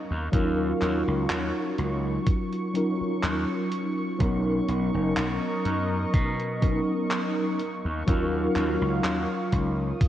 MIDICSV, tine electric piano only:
0, 0, Header, 1, 2, 480
1, 0, Start_track
1, 0, Tempo, 967742
1, 165, Time_signature, 4, 2, 24, 8
1, 5000, End_track
2, 0, Start_track
2, 0, Title_t, "Tine electric piano"
2, 0, Program_c, 0, 4
2, 10, Control_c, 0, 64, 127
2, 158, Note_on_c, 0, 54, 98
2, 162, Note_on_c, 0, 61, 84
2, 166, Note_on_c, 0, 63, 88
2, 170, Note_on_c, 0, 65, 87
2, 174, Note_on_c, 0, 70, 108
2, 1335, Note_off_c, 0, 54, 0
2, 1337, Note_off_c, 0, 61, 0
2, 1339, Note_off_c, 0, 63, 0
2, 1340, Note_off_c, 0, 65, 0
2, 1342, Note_off_c, 0, 70, 0
2, 1358, Note_on_c, 0, 54, 74
2, 1361, Note_on_c, 0, 61, 69
2, 1365, Note_on_c, 0, 63, 67
2, 1369, Note_on_c, 0, 65, 63
2, 1372, Note_on_c, 0, 70, 76
2, 2054, Note_off_c, 0, 54, 0
2, 2056, Note_off_c, 0, 61, 0
2, 2058, Note_off_c, 0, 63, 0
2, 2060, Note_off_c, 0, 65, 0
2, 2062, Note_off_c, 0, 70, 0
2, 2077, Note_on_c, 0, 54, 97
2, 2081, Note_on_c, 0, 59, 88
2, 2084, Note_on_c, 0, 61, 87
2, 2089, Note_on_c, 0, 63, 82
2, 2091, Control_c, 0, 64, 0
2, 2092, Note_on_c, 0, 70, 107
2, 2171, Control_c, 0, 64, 127
2, 3254, Note_off_c, 0, 54, 0
2, 3256, Note_off_c, 0, 59, 0
2, 3258, Note_off_c, 0, 61, 0
2, 3260, Note_off_c, 0, 63, 0
2, 3262, Note_off_c, 0, 70, 0
2, 3281, Note_on_c, 0, 54, 73
2, 3283, Note_on_c, 0, 59, 70
2, 3285, Note_on_c, 0, 61, 65
2, 3287, Note_on_c, 0, 63, 67
2, 3288, Note_on_c, 0, 70, 79
2, 3749, Note_off_c, 0, 54, 0
2, 3750, Note_off_c, 0, 59, 0
2, 3751, Note_off_c, 0, 61, 0
2, 3752, Note_off_c, 0, 63, 0
2, 3753, Note_off_c, 0, 70, 0
2, 3771, Control_c, 0, 64, 0
2, 3844, Control_c, 0, 64, 127
2, 3997, Note_on_c, 0, 54, 95
2, 4001, Note_on_c, 0, 61, 90
2, 4004, Note_on_c, 0, 63, 85
2, 4008, Note_on_c, 0, 65, 84
2, 4011, Note_on_c, 0, 70, 103
2, 5000, Note_off_c, 0, 54, 0
2, 5000, Note_off_c, 0, 61, 0
2, 5000, Note_off_c, 0, 63, 0
2, 5000, Note_off_c, 0, 65, 0
2, 5000, Note_off_c, 0, 70, 0
2, 5000, End_track
0, 0, End_of_file